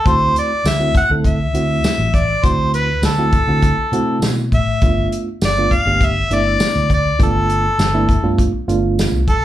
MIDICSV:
0, 0, Header, 1, 5, 480
1, 0, Start_track
1, 0, Tempo, 595238
1, 46, Time_signature, 4, 2, 24, 8
1, 7620, End_track
2, 0, Start_track
2, 0, Title_t, "Harmonica"
2, 0, Program_c, 0, 22
2, 60, Note_on_c, 0, 72, 105
2, 292, Note_off_c, 0, 72, 0
2, 312, Note_on_c, 0, 74, 92
2, 550, Note_on_c, 0, 76, 107
2, 562, Note_off_c, 0, 74, 0
2, 777, Note_off_c, 0, 76, 0
2, 784, Note_on_c, 0, 78, 105
2, 888, Note_off_c, 0, 78, 0
2, 1013, Note_on_c, 0, 76, 91
2, 1736, Note_on_c, 0, 74, 81
2, 1749, Note_off_c, 0, 76, 0
2, 1978, Note_on_c, 0, 72, 96
2, 1990, Note_off_c, 0, 74, 0
2, 2207, Note_off_c, 0, 72, 0
2, 2212, Note_on_c, 0, 71, 77
2, 2432, Note_off_c, 0, 71, 0
2, 2460, Note_on_c, 0, 69, 85
2, 3380, Note_off_c, 0, 69, 0
2, 3665, Note_on_c, 0, 76, 96
2, 4102, Note_off_c, 0, 76, 0
2, 4396, Note_on_c, 0, 74, 97
2, 4632, Note_on_c, 0, 77, 102
2, 4644, Note_off_c, 0, 74, 0
2, 4879, Note_on_c, 0, 76, 93
2, 4892, Note_off_c, 0, 77, 0
2, 5115, Note_on_c, 0, 74, 107
2, 5127, Note_off_c, 0, 76, 0
2, 5579, Note_off_c, 0, 74, 0
2, 5593, Note_on_c, 0, 74, 83
2, 5802, Note_off_c, 0, 74, 0
2, 5830, Note_on_c, 0, 69, 87
2, 6744, Note_off_c, 0, 69, 0
2, 7492, Note_on_c, 0, 69, 91
2, 7620, Note_off_c, 0, 69, 0
2, 7620, End_track
3, 0, Start_track
3, 0, Title_t, "Reed electric piano"
3, 0, Program_c, 1, 4
3, 52, Note_on_c, 1, 57, 72
3, 53, Note_on_c, 1, 60, 61
3, 56, Note_on_c, 1, 66, 73
3, 57, Note_on_c, 1, 64, 55
3, 414, Note_off_c, 1, 57, 0
3, 414, Note_off_c, 1, 60, 0
3, 416, Note_off_c, 1, 66, 0
3, 417, Note_off_c, 1, 64, 0
3, 644, Note_on_c, 1, 64, 67
3, 646, Note_on_c, 1, 57, 70
3, 646, Note_on_c, 1, 66, 73
3, 649, Note_on_c, 1, 60, 69
3, 790, Note_off_c, 1, 64, 0
3, 791, Note_off_c, 1, 57, 0
3, 791, Note_off_c, 1, 66, 0
3, 792, Note_off_c, 1, 60, 0
3, 895, Note_on_c, 1, 57, 69
3, 897, Note_on_c, 1, 69, 69
3, 898, Note_on_c, 1, 60, 56
3, 901, Note_on_c, 1, 64, 53
3, 1109, Note_off_c, 1, 57, 0
3, 1110, Note_off_c, 1, 60, 0
3, 1110, Note_off_c, 1, 69, 0
3, 1112, Note_off_c, 1, 64, 0
3, 1243, Note_on_c, 1, 57, 65
3, 1245, Note_on_c, 1, 64, 67
3, 1246, Note_on_c, 1, 60, 68
3, 1249, Note_on_c, 1, 66, 80
3, 1682, Note_off_c, 1, 57, 0
3, 1683, Note_off_c, 1, 60, 0
3, 1683, Note_off_c, 1, 64, 0
3, 1684, Note_off_c, 1, 66, 0
3, 1965, Note_on_c, 1, 60, 58
3, 1965, Note_on_c, 1, 64, 53
3, 1965, Note_on_c, 1, 66, 78
3, 1966, Note_on_c, 1, 57, 60
3, 2330, Note_off_c, 1, 60, 0
3, 2330, Note_off_c, 1, 64, 0
3, 2330, Note_off_c, 1, 66, 0
3, 2331, Note_off_c, 1, 57, 0
3, 2565, Note_on_c, 1, 60, 62
3, 2567, Note_on_c, 1, 64, 63
3, 2568, Note_on_c, 1, 57, 74
3, 2571, Note_on_c, 1, 66, 80
3, 2710, Note_off_c, 1, 60, 0
3, 2711, Note_off_c, 1, 64, 0
3, 2712, Note_off_c, 1, 57, 0
3, 2713, Note_off_c, 1, 66, 0
3, 2804, Note_on_c, 1, 57, 66
3, 2806, Note_on_c, 1, 60, 63
3, 2808, Note_on_c, 1, 64, 57
3, 2810, Note_on_c, 1, 66, 69
3, 3023, Note_off_c, 1, 57, 0
3, 3024, Note_off_c, 1, 60, 0
3, 3025, Note_off_c, 1, 64, 0
3, 3026, Note_off_c, 1, 66, 0
3, 3165, Note_on_c, 1, 60, 79
3, 3167, Note_on_c, 1, 64, 77
3, 3168, Note_on_c, 1, 57, 80
3, 3172, Note_on_c, 1, 66, 95
3, 3603, Note_off_c, 1, 60, 0
3, 3603, Note_off_c, 1, 64, 0
3, 3604, Note_off_c, 1, 57, 0
3, 3606, Note_off_c, 1, 66, 0
3, 3887, Note_on_c, 1, 57, 62
3, 3889, Note_on_c, 1, 59, 59
3, 3893, Note_on_c, 1, 65, 64
3, 3897, Note_on_c, 1, 62, 54
3, 4251, Note_off_c, 1, 57, 0
3, 4252, Note_off_c, 1, 59, 0
3, 4254, Note_off_c, 1, 65, 0
3, 4256, Note_off_c, 1, 62, 0
3, 4497, Note_on_c, 1, 59, 71
3, 4498, Note_on_c, 1, 62, 67
3, 4500, Note_on_c, 1, 57, 66
3, 4502, Note_on_c, 1, 65, 73
3, 4636, Note_off_c, 1, 59, 0
3, 4636, Note_off_c, 1, 62, 0
3, 4638, Note_off_c, 1, 57, 0
3, 4639, Note_off_c, 1, 65, 0
3, 4728, Note_on_c, 1, 57, 60
3, 4730, Note_on_c, 1, 59, 58
3, 4732, Note_on_c, 1, 67, 67
3, 4733, Note_on_c, 1, 62, 61
3, 4945, Note_off_c, 1, 57, 0
3, 4946, Note_off_c, 1, 59, 0
3, 4947, Note_off_c, 1, 67, 0
3, 4948, Note_off_c, 1, 62, 0
3, 5088, Note_on_c, 1, 57, 73
3, 5089, Note_on_c, 1, 62, 71
3, 5092, Note_on_c, 1, 59, 58
3, 5093, Note_on_c, 1, 64, 78
3, 5524, Note_off_c, 1, 57, 0
3, 5524, Note_off_c, 1, 62, 0
3, 5526, Note_off_c, 1, 59, 0
3, 5526, Note_off_c, 1, 64, 0
3, 5798, Note_on_c, 1, 59, 66
3, 5799, Note_on_c, 1, 65, 67
3, 5801, Note_on_c, 1, 57, 70
3, 5802, Note_on_c, 1, 62, 55
3, 6166, Note_off_c, 1, 59, 0
3, 6167, Note_off_c, 1, 65, 0
3, 6168, Note_off_c, 1, 57, 0
3, 6168, Note_off_c, 1, 62, 0
3, 6404, Note_on_c, 1, 59, 79
3, 6405, Note_on_c, 1, 57, 92
3, 6406, Note_on_c, 1, 62, 78
3, 6408, Note_on_c, 1, 64, 102
3, 6549, Note_off_c, 1, 57, 0
3, 6549, Note_off_c, 1, 59, 0
3, 6550, Note_off_c, 1, 62, 0
3, 6551, Note_off_c, 1, 64, 0
3, 6640, Note_on_c, 1, 57, 81
3, 6643, Note_on_c, 1, 65, 83
3, 6644, Note_on_c, 1, 59, 66
3, 6644, Note_on_c, 1, 62, 71
3, 6860, Note_off_c, 1, 57, 0
3, 6862, Note_off_c, 1, 65, 0
3, 6863, Note_off_c, 1, 59, 0
3, 6863, Note_off_c, 1, 62, 0
3, 6999, Note_on_c, 1, 59, 70
3, 7001, Note_on_c, 1, 65, 102
3, 7002, Note_on_c, 1, 57, 82
3, 7006, Note_on_c, 1, 62, 78
3, 7438, Note_off_c, 1, 59, 0
3, 7440, Note_off_c, 1, 57, 0
3, 7440, Note_off_c, 1, 65, 0
3, 7442, Note_off_c, 1, 62, 0
3, 7620, End_track
4, 0, Start_track
4, 0, Title_t, "Fingered electric bass"
4, 0, Program_c, 2, 33
4, 47, Note_on_c, 2, 38, 87
4, 241, Note_off_c, 2, 38, 0
4, 520, Note_on_c, 2, 38, 92
4, 716, Note_off_c, 2, 38, 0
4, 884, Note_on_c, 2, 38, 77
4, 1176, Note_off_c, 2, 38, 0
4, 1236, Note_on_c, 2, 38, 82
4, 1434, Note_off_c, 2, 38, 0
4, 1596, Note_on_c, 2, 33, 75
4, 1891, Note_off_c, 2, 33, 0
4, 1967, Note_on_c, 2, 38, 96
4, 2355, Note_off_c, 2, 38, 0
4, 2437, Note_on_c, 2, 38, 100
4, 2733, Note_off_c, 2, 38, 0
4, 2802, Note_on_c, 2, 50, 83
4, 2998, Note_off_c, 2, 50, 0
4, 3160, Note_on_c, 2, 48, 74
4, 3378, Note_off_c, 2, 48, 0
4, 3404, Note_on_c, 2, 47, 68
4, 3620, Note_off_c, 2, 47, 0
4, 3647, Note_on_c, 2, 45, 85
4, 3862, Note_off_c, 2, 45, 0
4, 3885, Note_on_c, 2, 31, 87
4, 4079, Note_off_c, 2, 31, 0
4, 4370, Note_on_c, 2, 31, 92
4, 4562, Note_off_c, 2, 31, 0
4, 4721, Note_on_c, 2, 31, 77
4, 5013, Note_off_c, 2, 31, 0
4, 5083, Note_on_c, 2, 31, 84
4, 5278, Note_off_c, 2, 31, 0
4, 5448, Note_on_c, 2, 38, 81
4, 5737, Note_off_c, 2, 38, 0
4, 5803, Note_on_c, 2, 31, 90
4, 6192, Note_off_c, 2, 31, 0
4, 6277, Note_on_c, 2, 31, 110
4, 6572, Note_off_c, 2, 31, 0
4, 6638, Note_on_c, 2, 43, 91
4, 6835, Note_off_c, 2, 43, 0
4, 6997, Note_on_c, 2, 31, 91
4, 7292, Note_off_c, 2, 31, 0
4, 7353, Note_on_c, 2, 36, 77
4, 7552, Note_off_c, 2, 36, 0
4, 7620, End_track
5, 0, Start_track
5, 0, Title_t, "Drums"
5, 45, Note_on_c, 9, 42, 74
5, 46, Note_on_c, 9, 36, 108
5, 125, Note_off_c, 9, 42, 0
5, 127, Note_off_c, 9, 36, 0
5, 289, Note_on_c, 9, 42, 56
5, 370, Note_off_c, 9, 42, 0
5, 528, Note_on_c, 9, 42, 87
5, 528, Note_on_c, 9, 54, 114
5, 532, Note_on_c, 9, 38, 99
5, 609, Note_off_c, 9, 42, 0
5, 609, Note_off_c, 9, 54, 0
5, 613, Note_off_c, 9, 38, 0
5, 764, Note_on_c, 9, 36, 81
5, 766, Note_on_c, 9, 42, 64
5, 845, Note_off_c, 9, 36, 0
5, 847, Note_off_c, 9, 42, 0
5, 1003, Note_on_c, 9, 36, 74
5, 1005, Note_on_c, 9, 42, 75
5, 1084, Note_off_c, 9, 36, 0
5, 1086, Note_off_c, 9, 42, 0
5, 1246, Note_on_c, 9, 42, 57
5, 1326, Note_off_c, 9, 42, 0
5, 1485, Note_on_c, 9, 42, 82
5, 1485, Note_on_c, 9, 54, 110
5, 1489, Note_on_c, 9, 38, 112
5, 1566, Note_off_c, 9, 42, 0
5, 1566, Note_off_c, 9, 54, 0
5, 1570, Note_off_c, 9, 38, 0
5, 1724, Note_on_c, 9, 36, 83
5, 1727, Note_on_c, 9, 42, 58
5, 1805, Note_off_c, 9, 36, 0
5, 1808, Note_off_c, 9, 42, 0
5, 1964, Note_on_c, 9, 36, 96
5, 1964, Note_on_c, 9, 42, 80
5, 2045, Note_off_c, 9, 36, 0
5, 2045, Note_off_c, 9, 42, 0
5, 2206, Note_on_c, 9, 42, 59
5, 2287, Note_off_c, 9, 42, 0
5, 2442, Note_on_c, 9, 42, 85
5, 2442, Note_on_c, 9, 54, 97
5, 2446, Note_on_c, 9, 38, 101
5, 2523, Note_off_c, 9, 42, 0
5, 2523, Note_off_c, 9, 54, 0
5, 2527, Note_off_c, 9, 38, 0
5, 2680, Note_on_c, 9, 42, 54
5, 2683, Note_on_c, 9, 36, 79
5, 2761, Note_off_c, 9, 42, 0
5, 2764, Note_off_c, 9, 36, 0
5, 2921, Note_on_c, 9, 42, 83
5, 2924, Note_on_c, 9, 36, 77
5, 3002, Note_off_c, 9, 42, 0
5, 3004, Note_off_c, 9, 36, 0
5, 3167, Note_on_c, 9, 42, 57
5, 3247, Note_off_c, 9, 42, 0
5, 3405, Note_on_c, 9, 42, 87
5, 3405, Note_on_c, 9, 54, 118
5, 3409, Note_on_c, 9, 38, 105
5, 3485, Note_off_c, 9, 42, 0
5, 3485, Note_off_c, 9, 54, 0
5, 3489, Note_off_c, 9, 38, 0
5, 3646, Note_on_c, 9, 36, 71
5, 3647, Note_on_c, 9, 42, 55
5, 3726, Note_off_c, 9, 36, 0
5, 3727, Note_off_c, 9, 42, 0
5, 3882, Note_on_c, 9, 42, 69
5, 3886, Note_on_c, 9, 36, 105
5, 3963, Note_off_c, 9, 42, 0
5, 3967, Note_off_c, 9, 36, 0
5, 4131, Note_on_c, 9, 42, 59
5, 4211, Note_off_c, 9, 42, 0
5, 4367, Note_on_c, 9, 42, 73
5, 4367, Note_on_c, 9, 54, 90
5, 4371, Note_on_c, 9, 38, 106
5, 4447, Note_off_c, 9, 42, 0
5, 4447, Note_off_c, 9, 54, 0
5, 4451, Note_off_c, 9, 38, 0
5, 4606, Note_on_c, 9, 36, 68
5, 4609, Note_on_c, 9, 42, 58
5, 4686, Note_off_c, 9, 36, 0
5, 4689, Note_off_c, 9, 42, 0
5, 4844, Note_on_c, 9, 36, 83
5, 4847, Note_on_c, 9, 42, 80
5, 4925, Note_off_c, 9, 36, 0
5, 4928, Note_off_c, 9, 42, 0
5, 5087, Note_on_c, 9, 42, 59
5, 5167, Note_off_c, 9, 42, 0
5, 5322, Note_on_c, 9, 42, 88
5, 5322, Note_on_c, 9, 54, 113
5, 5326, Note_on_c, 9, 38, 105
5, 5403, Note_off_c, 9, 42, 0
5, 5403, Note_off_c, 9, 54, 0
5, 5407, Note_off_c, 9, 38, 0
5, 5564, Note_on_c, 9, 36, 71
5, 5564, Note_on_c, 9, 42, 57
5, 5644, Note_off_c, 9, 36, 0
5, 5645, Note_off_c, 9, 42, 0
5, 5804, Note_on_c, 9, 36, 105
5, 5805, Note_on_c, 9, 42, 86
5, 5884, Note_off_c, 9, 36, 0
5, 5886, Note_off_c, 9, 42, 0
5, 6044, Note_on_c, 9, 42, 57
5, 6124, Note_off_c, 9, 42, 0
5, 6284, Note_on_c, 9, 42, 82
5, 6284, Note_on_c, 9, 54, 106
5, 6288, Note_on_c, 9, 38, 98
5, 6364, Note_off_c, 9, 42, 0
5, 6364, Note_off_c, 9, 54, 0
5, 6368, Note_off_c, 9, 38, 0
5, 6522, Note_on_c, 9, 36, 72
5, 6526, Note_on_c, 9, 42, 62
5, 6603, Note_off_c, 9, 36, 0
5, 6607, Note_off_c, 9, 42, 0
5, 6762, Note_on_c, 9, 36, 77
5, 6764, Note_on_c, 9, 42, 84
5, 6842, Note_off_c, 9, 36, 0
5, 6844, Note_off_c, 9, 42, 0
5, 7008, Note_on_c, 9, 42, 55
5, 7089, Note_off_c, 9, 42, 0
5, 7249, Note_on_c, 9, 42, 82
5, 7249, Note_on_c, 9, 54, 103
5, 7253, Note_on_c, 9, 38, 116
5, 7330, Note_off_c, 9, 42, 0
5, 7330, Note_off_c, 9, 54, 0
5, 7334, Note_off_c, 9, 38, 0
5, 7481, Note_on_c, 9, 36, 73
5, 7481, Note_on_c, 9, 42, 52
5, 7561, Note_off_c, 9, 42, 0
5, 7562, Note_off_c, 9, 36, 0
5, 7620, End_track
0, 0, End_of_file